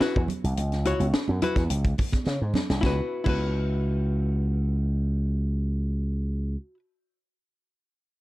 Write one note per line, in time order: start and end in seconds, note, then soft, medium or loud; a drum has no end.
0.00 0.20 E4 medium
0.00 0.21 F#4 medium
0.00 0.21 B4 loud
0.00 muted slap bass stroke soft
0.00 snare loud
0.00 muted conga soft
0.16 0.27 E2 loud
0.16 kick medium
0.28 closed hi-hat medium
0.28 high conga medium
0.28 low conga medium
0.44 0.55 C2 medium
0.44 closed hi-hat medium
0.57 0.93 C#2 loud
0.57 closed hi-hat medium
0.57 muted conga soft
0.72 snare soft
0.72 closed hi-hat soft
0.85 1.05 E4 medium
0.85 1.06 F#4 medium
0.85 1.06 C#5 medium
0.85 closed hi-hat medium
0.85 muted conga soft
1.00 1.11 C#2 medium
1.00 closed hi-hat medium
1.00 high conga medium
1.14 muted slap bass stroke medium
1.14 snare loud
1.28 1.39 F#2 medium
1.28 high conga medium
1.42 1.62 E4 medium
1.42 1.62 F#4 loud
1.42 1.63 B4 medium
1.42 closed hi-hat medium
1.42 muted conga soft
1.42 low conga medium
1.56 1.67 E2 medium
1.56 kick medium
1.56 snare soft
1.56 closed hi-hat medium
1.56 high conga medium
1.70 1.93 C#2 medium
1.70 closed hi-hat loud
1.70 muted conga soft
1.85 kick loud
1.85 closed hi-hat soft
1.98 kick medium
1.98 open hi-hat medium
1.98 muted conga soft
2.12 kick medium
2.12 snare soft
2.12 closed hi-hat medium
2.12 high conga medium
2.26 2.39 C#3 loud
2.26 snare medium
2.41 2.52 G#2 medium
2.54 snare medium
2.54 muted conga soft
2.54 high conga medium
2.54 low conga medium
2.69 2.80 C2 medium
2.69 snare loud
2.81 2.99 C#2 medium
2.81 3.24 E4 medium
2.81 3.26 F#4 medium
2.81 kick loud
2.81 snare medium
2.81 high conga medium
2.86 3.29 B4 medium
3.24 6.55 C#2 loud
3.24 6.74 E4 medium
3.24 6.77 F#4 medium
3.24 kick loud
3.24 crash medium
3.24 high conga medium
3.29 6.79 B4 loud